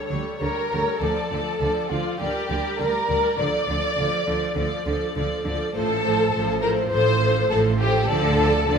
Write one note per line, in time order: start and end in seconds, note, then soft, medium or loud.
0.00 0.10 A4 medium
0.09 0.20 D2 soft
0.09 0.19 D3 soft
0.09 0.40 G3 soft
0.09 0.40 A4 soft
0.09 0.38 C#5 soft
0.39 0.50 D2 soft
0.39 0.49 D3 soft
0.39 0.70 G3 soft
0.39 0.70 A4 soft
0.39 0.97 A#4 medium
0.39 0.69 C#5 soft
0.70 0.80 D2 soft
0.70 0.80 D3 soft
0.70 1.00 G3 soft
0.70 1.00 A4 soft
0.70 1.00 C#5 soft
1.00 1.09 D2 soft
1.00 1.09 D3 soft
1.00 1.30 F3 soft
1.00 1.89 A4 medium
1.00 1.30 A4 soft
1.00 1.30 D5 soft
1.31 1.40 D2 soft
1.31 1.39 D3 soft
1.31 1.60 F3 soft
1.31 1.59 A4 soft
1.31 1.59 D5 soft
1.60 1.69 D2 soft
1.60 1.69 D3 soft
1.60 1.89 F3 soft
1.60 1.89 A4 soft
1.60 1.89 D5 soft
1.90 1.99 D2 soft
1.90 1.98 D3 soft
1.90 2.19 F3 soft
1.90 2.20 F4 medium
1.90 2.19 A4 soft
1.90 2.18 D5 soft
2.19 2.29 D2 soft
2.19 2.28 D3 soft
2.19 2.48 G3 soft
2.19 2.78 G4 medium
2.19 2.49 A#4 soft
2.19 2.48 D5 soft
2.49 2.58 D2 soft
2.49 2.58 D3 soft
2.49 2.78 G3 soft
2.49 2.78 A#4 soft
2.49 2.78 D5 soft
2.79 2.89 D2 soft
2.79 2.87 D3 soft
2.79 3.08 G3 soft
2.79 3.38 A#4 medium
2.79 3.08 A#4 soft
2.79 3.06 D5 soft
3.08 3.18 D2 soft
3.08 3.17 D3 soft
3.08 3.38 G3 soft
3.08 3.38 A#4 soft
3.08 3.37 D5 soft
3.38 3.47 D2 soft
3.38 3.46 D3 soft
3.38 3.66 F3 soft
3.38 3.67 A4 soft
3.38 4.86 D5 medium
3.38 3.65 D5 soft
3.66 3.76 D2 soft
3.66 3.75 D3 soft
3.66 3.96 F3 soft
3.66 3.96 A4 soft
3.66 3.96 D5 soft
3.97 4.06 D2 soft
3.97 4.05 D3 soft
3.97 4.26 F3 soft
3.97 4.26 A4 soft
3.97 4.26 D5 soft
4.27 4.36 D2 soft
4.27 4.35 D3 soft
4.27 4.56 F3 soft
4.27 4.56 A4 soft
4.27 4.56 D5 soft
4.56 4.65 D2 soft
4.56 4.64 D3 medium
4.56 4.85 F3 soft
4.56 4.85 A4 soft
4.56 4.86 D5 soft
4.85 4.94 D2 soft
4.85 4.93 D3 soft
4.85 5.15 F3 soft
4.85 5.16 A4 soft
4.85 5.16 D5 soft
5.15 5.25 D2 soft
5.15 5.23 D3 soft
5.15 5.45 F3 soft
5.15 5.45 A4 soft
5.15 5.44 D5 soft
5.45 5.54 D2 soft
5.45 5.53 D3 soft
5.45 5.74 F3 soft
5.45 5.74 A4 soft
5.45 5.74 D5 soft
5.74 6.26 A1 medium
5.74 6.26 A2 medium
5.74 6.03 F3 medium
5.74 6.58 A4 medium
5.74 6.03 A4 medium
5.74 6.02 C5 soft
6.04 6.32 F3 soft
6.04 6.32 A4 soft
6.04 6.32 C5 soft
6.33 6.85 A1 medium
6.33 6.84 A2 medium
6.33 6.61 F3 soft
6.33 6.61 A4 soft
6.33 6.62 C5 soft
6.62 6.90 F3 soft
6.62 6.90 A4 soft
6.62 6.70 A#4 medium
6.62 6.91 C5 soft
6.91 7.44 A1 medium
6.91 7.43 A2 medium
6.91 7.20 F3 medium
6.91 7.20 A4 medium
6.91 7.49 C5 medium
6.91 7.21 C5 medium
7.21 7.49 F3 soft
7.21 7.49 A4 medium
7.21 7.50 C5 soft
7.50 8.02 A1 medium
7.50 8.02 A2 medium
7.50 7.78 F3 soft
7.50 7.78 A4 soft
7.50 7.58 A4 medium
7.50 7.79 C5 soft
7.78 8.07 F3 soft
7.78 8.08 G4 medium
7.78 8.07 A4 soft
7.78 8.09 C5 medium
8.06 8.61 D2 medium
8.06 8.61 D3 medium
8.06 8.36 F3 medium
8.06 8.78 A4 medium
8.06 8.36 A4 medium
8.06 8.37 D5 medium
8.37 8.66 F3 soft
8.37 8.65 A4 soft
8.37 8.66 D5 soft
8.67 8.78 D2 medium
8.67 8.78 D3 medium
8.67 8.78 F3 soft
8.67 8.78 A4 medium
8.67 8.78 D5 soft